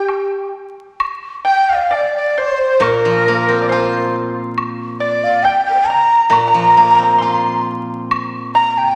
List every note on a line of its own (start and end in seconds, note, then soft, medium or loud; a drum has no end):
0.00 0.48 G4 medium
0.00 0.51 G4 medium
0.00 0.55 G5 medium
0.08 high woodblock soft
0.08 low woodblock soft
1.00 high woodblock medium
1.45 1.88 G5 medium
1.45 1.71 G5 medium
1.50 1.74 G5 medium
1.69 1.76 F5 medium
1.69 1.97 F5 medium
1.75 1.83 D5 medium
1.81 1.93 F5 medium
1.91 2.33 D5 medium
1.91 2.14 D5 medium
1.91 low woodblock soft
1.95 2.16 D5 medium
2.15 2.40 D5 medium
2.15 2.43 D5 medium
2.38 2.79 C5 medium
2.38 2.85 C5 medium
2.80 5.43 A#2 medium
2.80 3.58 A#4 medium
2.80 4.14 A#4 medium
2.80 3.62 A#4 medium
2.80 high woodblock medium
3.05 4.79 F3 soft
3.28 5.01 A#3 medium
3.48 5.22 C4 soft
3.62 3.69 D5 medium
3.62 3.71 D5 medium
3.69 5.45 F4 medium
3.69 4.10 C5 medium
3.69 4.13 C5 medium
3.69 low woodblock soft
4.58 high woodblock medium
5.00 5.46 D5 medium
5.00 5.41 D5 medium
5.00 5.25 D5 medium
5.24 5.44 F5 loud
5.43 5.64 G5 loud
5.43 5.64 G5 medium
5.43 5.85 G5 medium
5.43 low woodblock soft
5.65 5.89 G5 loud
5.65 5.68 G5 medium
5.70 5.74 A#4 soft
5.74 5.78 C5 soft
5.80 5.82 F5 soft
5.80 5.86 G5 medium
5.85 6.29 A#5 medium
5.85 6.32 A#5 loud
5.90 6.29 A#5 medium
6.30 8.95 A#2 medium
6.30 7.16 A#5 medium
6.30 6.38 A#5 medium
6.30 7.62 A#5 loud
6.30 high woodblock medium
6.39 6.46 A#5 medium
6.48 6.52 A#5 medium
6.53 8.34 F3 medium
6.53 6.59 A#5 medium
6.60 6.68 A#5 medium
6.69 6.75 A#5 medium
6.76 8.57 A#3 soft
6.76 6.81 A#5 medium
6.82 6.90 A#5 medium
6.91 6.95 A#5 medium
6.96 8.79 C4 soft
6.96 7.02 A#5 medium
7.03 7.11 A#5 medium
7.18 8.95 F4 soft
7.18 7.61 C6 medium
7.18 7.62 C6 medium
7.18 low woodblock soft
8.11 high woodblock medium
8.55 8.79 A#5 medium
8.55 8.95 A#5 medium
8.55 8.79 A#5 loud
8.78 8.86 G5 medium
8.78 8.95 G5 medium
8.85 8.91 A#5 medium
8.89 8.95 G5 medium